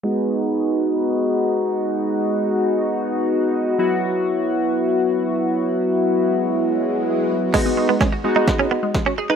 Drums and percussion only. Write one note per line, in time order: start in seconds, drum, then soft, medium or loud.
7.54 kick loud
7.54 snare medium
7.54 crash medium
8.01 kick loud
8.01 snare medium
8.48 kick loud
8.48 snare medium
8.94 kick loud
8.94 snare medium